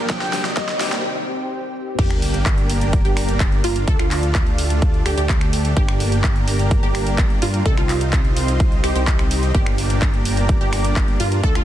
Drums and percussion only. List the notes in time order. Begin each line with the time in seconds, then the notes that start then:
0.10 kick, snare, closed hi-hat
0.21 snare, closed hi-hat
0.33 snare, open hi-hat
0.45 snare, closed hi-hat
0.57 kick, snare, closed hi-hat
0.69 snare, closed hi-hat
0.81 snare, open hi-hat
0.92 snare, closed hi-hat
1.99 kick, closed hi-hat, crash
2.11 finger snap, closed hi-hat
2.22 open hi-hat
2.34 closed hi-hat
2.46 kick, clap, closed hi-hat
2.58 closed hi-hat
2.70 open hi-hat
2.81 closed hi-hat
2.93 kick, closed hi-hat
3.05 closed hi-hat
3.17 finger snap, open hi-hat
3.29 closed hi-hat
3.40 kick, clap, closed hi-hat
3.52 closed hi-hat
3.64 open hi-hat
3.76 closed hi-hat
3.88 kick, closed hi-hat
3.99 finger snap, closed hi-hat
4.11 clap, open hi-hat
4.23 closed hi-hat
4.35 kick, clap, closed hi-hat
4.47 closed hi-hat
4.58 open hi-hat
4.70 closed hi-hat
4.82 kick, closed hi-hat
4.94 closed hi-hat
5.06 finger snap, open hi-hat
5.18 closed hi-hat
5.29 kick, clap, closed hi-hat
5.41 finger snap, closed hi-hat
5.53 open hi-hat
5.65 closed hi-hat
5.77 kick, closed hi-hat
5.89 finger snap, closed hi-hat
6.00 open hi-hat
6.12 closed hi-hat
6.24 kick, clap, closed hi-hat
6.36 closed hi-hat
6.48 open hi-hat
6.59 closed hi-hat
6.71 kick, closed hi-hat
6.83 closed hi-hat
6.95 finger snap, open hi-hat
7.07 closed hi-hat
7.18 kick, clap, closed hi-hat
7.30 closed hi-hat
7.42 open hi-hat
7.54 closed hi-hat
7.66 kick, closed hi-hat
7.77 finger snap, closed hi-hat
7.89 clap, open hi-hat
8.01 closed hi-hat
8.13 kick, clap, closed hi-hat
8.25 closed hi-hat
8.37 open hi-hat
8.48 closed hi-hat
8.60 kick, closed hi-hat
8.72 closed hi-hat
8.84 finger snap, open hi-hat
8.96 closed hi-hat
9.07 kick, clap, closed hi-hat
9.19 finger snap, closed hi-hat
9.31 open hi-hat
9.43 closed hi-hat
9.55 kick, closed hi-hat
9.66 finger snap, closed hi-hat
9.78 open hi-hat
9.90 closed hi-hat
10.02 kick, clap, closed hi-hat
10.14 closed hi-hat
10.25 open hi-hat
10.37 closed hi-hat
10.49 kick, closed hi-hat
10.61 closed hi-hat
10.73 finger snap, open hi-hat
10.84 closed hi-hat
10.96 kick, clap, closed hi-hat
11.08 closed hi-hat
11.20 open hi-hat
11.32 closed hi-hat
11.44 kick, closed hi-hat
11.55 finger snap, closed hi-hat